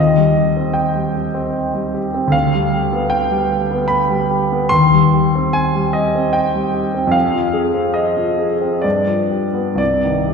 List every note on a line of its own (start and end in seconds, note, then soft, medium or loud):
0.00 2.27 D#2 medium
0.00 0.74 D#5 medium
0.18 0.48 G3 soft
0.37 0.68 G4 soft
0.57 1.19 C4 soft
0.74 1.14 G5 medium
0.95 1.26 G3 soft
1.15 1.46 G4 soft
1.34 1.98 C4 soft
1.74 2.06 G3 soft
1.94 2.26 G4 soft
2.14 2.34 C4 soft
2.28 4.64 D2 medium
2.32 3.11 F5 medium
2.54 2.85 G3 soft
2.74 3.05 G4 soft
2.92 3.55 B3 soft
3.10 3.89 G5 medium
3.31 3.62 G3 soft
3.52 3.83 G4 soft
3.71 4.34 B3 soft
3.88 4.70 B5 medium
4.10 4.42 G3 soft
4.31 4.63 G4 soft
4.52 4.72 B3 soft
4.69 7.11 D#2 medium
4.69 5.53 C6 medium
4.93 5.26 G3 soft
5.14 5.47 G4 soft
5.35 6.01 C4 soft
5.53 5.95 G#5 medium
5.76 6.08 G3 soft
5.93 6.28 G4 soft
5.93 6.35 D#5 medium
6.15 6.79 C4 soft
6.33 7.13 G5 medium
6.55 6.87 G3 soft
6.74 7.06 G4 soft
6.94 7.14 C4 soft
7.07 8.77 F2 medium
7.12 7.94 F5 medium
7.34 7.66 F3 soft
7.53 7.87 G#4 soft
7.74 8.44 C4 soft
7.94 8.84 D#5 medium
8.17 8.53 F3 soft
8.38 8.75 G#4 soft
8.61 8.84 C4 soft
8.82 9.77 G2 soft
8.82 9.77 D5 medium
9.07 9.45 F3 soft
9.31 9.70 G4 soft
9.54 9.79 B3 soft
9.75 10.34 C2 soft
9.75 10.34 D5 medium
10.04 10.34 D#3 soft
10.28 10.34 G4 soft